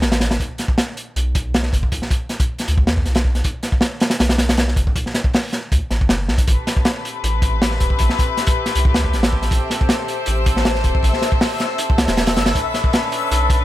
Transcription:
0.02 A1, snare, closed hi-hat
0.12 snare, closed hi-hat
0.20 snare, closed hi-hat
0.31 snare, closed hi-hat
0.40 B1, kick, closed hi-hat
0.58 snare, closed hi-hat
0.68 kick
0.78 snare, closed hi-hat
0.97 closed hi-hat
1.16 B1, closed hi-hat
1.35 kick, closed hi-hat
1.54 snare, closed hi-hat
1.63 snare
1.73 F#1, kick, closed hi-hat
1.83 kick
1.92 B1, kick, closed hi-hat
2.02 snare
2.10 kick, closed hi-hat
2.29 snare, closed hi-hat
2.40 kick, closed hi-hat
2.59 snare, closed hi-hat
2.68 D2, closed hi-hat
2.78 kick
2.87 E2, snare, closed hi-hat
2.97 kick
3.06 B1, snare, closed hi-hat
3.15 snare, closed hi-hat
3.25 kick
3.35 snare, closed hi-hat
3.44 B1, kick, closed hi-hat
3.63 snare, closed hi-hat
3.72 kick
3.81 snare, closed hi-hat
4.00 snare, closed hi-hat
4.10 snare, closed hi-hat
4.20 B1, snare, closed hi-hat
4.29 snare, closed hi-hat
4.38 snare, closed hi-hat
4.49 snare, closed hi-hat
4.57 snare, closed hi-hat
4.68 snare
4.76 F#1, kick, closed hi-hat
4.87 kick
4.96 B1, kick, closed hi-hat
5.06 snare
5.14 snare, closed hi-hat
5.24 kick
5.34 snare, open hi-hat
5.53 snare, closed hi-hat
5.72 D2, kick, closed hi-hat
5.90 A1, snare, closed hi-hat
6.01 F#1, kick
6.09 snare, closed hi-hat
6.28 B1, snare
6.38 kick, closed hi-hat
6.47 A1 C4 G4 A4 B4 E5 E6, kick, closed hi-hat
6.67 snare, closed hi-hat
6.76 kick
6.85 snare, closed hi-hat
7.05 closed hi-hat
7.23 A1, closed hi-hat
7.42 kick, closed hi-hat
7.62 snare, closed hi-hat
7.71 snare
7.80 E1, kick, closed hi-hat
7.90 kick
7.99 A1, kick, closed hi-hat
8.09 snare
8.19 kick, closed hi-hat
8.37 snare, closed hi-hat
8.46 kick, closed hi-hat
8.66 snare, closed hi-hat
8.75 C2, closed hi-hat
8.85 kick
8.94 D2, snare, closed hi-hat
9.04 kick
9.13 A1, snare, closed hi-hat
9.23 snare, closed hi-hat
9.33 kick
9.42 snare, closed hi-hat
9.51 A1 C5, kick, closed hi-hat
9.70 snare, closed hi-hat
9.81 kick
9.89 snare, closed hi-hat
10.08 closed hi-hat
10.26 A1, closed hi-hat
10.46 kick, closed hi-hat
10.57 snare
10.65 snare, closed hi-hat
10.75 snare
10.84 E1, kick, closed hi-hat
10.95 kick
11.03 A1, kick, closed hi-hat
11.13 snare
11.22 snare, closed hi-hat
11.32 kick
11.41 snare, open hi-hat
11.60 snare, closed hi-hat
11.78 closed hi-hat
11.90 kick
11.98 C2, snare, closed hi-hat
12.08 E1, snare, closed hi-hat
12.17 snare, closed hi-hat
12.27 snare, closed hi-hat
12.36 G1, snare, closed hi-hat
12.46 snare, closed hi-hat
12.55 B1 C#4 D4 B4, kick, closed hi-hat
12.74 snare, closed hi-hat
12.84 kick
12.93 snare, closed hi-hat
13.12 closed hi-hat
13.31 B1, closed hi-hat
13.50 kick, closed hi-hat

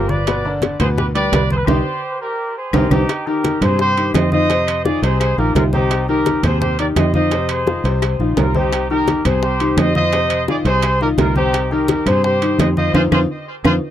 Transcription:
Already playing: G1 F3 F4 F5
0.09 B4 D5, high bongo, high conga
0.27 B2 B3 B4, high bongo, high conga, high timbale, claves
0.45 D3 D4 D5, high conga
0.62 high bongo, high conga, high timbale, low timbale
0.80 D2 B2 B3 G#4 B4 C5, high conga, low conga, high timbale, claves
0.98 G4 B4, high bongo, high conga, low conga
1.15 G3 G4 B4 D5 G5, high conga, high timbale
1.32 C2 B3 B4 B5, high bongo, low bongo, high conga, high timbale, low timbale, claves
1.50 G#4 C5, high conga
1.58 B4
1.66 C2 C4 D#4 G4 C5, low bongo, high conga, high timbale, claves
2.22 G4 A#4
2.58 G#4 C5
2.73 C2 C4 D#4 G4 A#4, low bongo, high conga, high timbale, claves
2.91 C2 C4 D#4 G4, low bongo, high conga, high timbale, claves
3.09 high bongo, high conga, high timbale, claves
3.27 D#3 D#4 G4 A#4, high conga
3.44 high bongo, high conga, high timbale, low timbale
3.61 G2 C3 C4 G#4 C5, high conga, low conga, high timbale, claves
3.79 G4 C5, high bongo, high conga
3.97 D#3 D#4 G4, high conga, high timbale
4.14 F2 C5 D#5, high bongo, low bongo, high conga, high timbale, low timbale, claves
4.32 D#3 D#4 F4 C5 D#5, high conga
4.50 C3 C4 C5, high bongo, high conga, high timbale
4.67 high conga, high timbale, claves
4.85 D#3 D#4 F4 G#4 D5, high bongo, high conga, low timbale
5.02 C2 C3 C4 G#4 C5, high bongo, high timbale
5.20 G#4 C5, high bongo, high conga, high timbale, claves
5.38 A#1 D#3 D#4 F4 G4 A#4, high bongo, high conga
5.55 C2 F4 A#4, high bongo, low bongo, high conga, high timbale, low timbale
5.73 C3 C4 D#4 G4 C5, high bongo, high conga
5.91 high bongo, high timbale, claves
6.08 D#3 D#4 G4 A#4, high conga
6.26 high bongo, high conga, high timbale, low timbale
6.43 D#2 C3 C4 G#4 C5, high conga, low conga, high timbale, claves
6.61 G4 C5, high bongo, high conga, low conga
6.79 D#3 D#4 G4 A#4 D5, high conga, high timbale
6.96 F2 C5 D#5, high bongo, low bongo, high conga, high timbale, low timbale, claves
7.14 D#3 D#4 F4 C5 D#5, high conga
7.31 C3 C4 C5, high bongo, high conga, high timbale
7.49 G#4 C5, high conga, high timbale, claves
7.67 D#3 D#4 F4, high bongo, high conga, low timbale
7.84 C2 C3 C4 C5, high bongo, high conga, high timbale
8.02 high bongo, high conga, high timbale, claves
8.19 A#1 D#3 D#4 F4, high bongo, high conga
8.37 C2 F4 A#4, high bongo, low bongo, high conga, high timbale, low timbale
8.55 C3 C4 D#4 G4 C5, high bongo, high conga
8.72 high bongo, high conga, high timbale, claves
8.90 D#3 D#4 G4 A#4, high conga
9.08 high bongo, high conga, high timbale, low timbale
9.25 C2 C3 C4 G#4 C5, high conga, low conga, high timbale, claves
9.43 G4 C5, high bongo, high conga
9.60 D#3 D#4 G4, high conga, high timbale
9.77 F2 C5 D#5, high bongo, low bongo, high conga, high timbale, low timbale, claves
9.95 D#3 D#4 F4 C5 D#5, high conga
10.13 C3 C4 C5, high bongo, high conga, high timbale
10.30 high conga, high timbale, claves
10.48 D#3 D#4 F4 G#4 D5, high bongo, high conga, low timbale
10.65 C2 C3 C4 G#4 C5, high bongo, high conga, high timbale
10.82 high bongo, high conga, high timbale, claves
11.00 D#3 D#4 F4 G4 A#4, high bongo, high conga
11.18 C2 F4 A#4, high bongo, low bongo, high conga, high timbale, low timbale
11.36 C3 C4 D#4 G4 C5, high bongo, high conga
11.53 high bongo, high conga, high timbale, claves
11.71 D#3 D#4 G4 A#4, high conga
11.88 G4 A#4, high bongo, high conga, high timbale, low timbale
12.06 G2 C3 C4 G#4 C5, high conga, low conga, high timbale, claves
12.24 G4 C5, high bongo, high conga
12.42 D#3 D#4 G4, high conga, high timbale
12.58 F2 C5 D#5, high bongo, low bongo, high conga, high timbale, low timbale, claves
12.77 D#3 D#4 F4 C5 D#5, high conga
12.94 F2 C4 D#4 F4 G#4 C5, low bongo, high conga, high timbale, claves
13.11 F2 C4 D#4 F4 G#4 C5, low bongo, high conga, high timbale, claves
13.64 F2 C4 D#4 F4 G#4 C5, low bongo, high conga, high timbale, claves

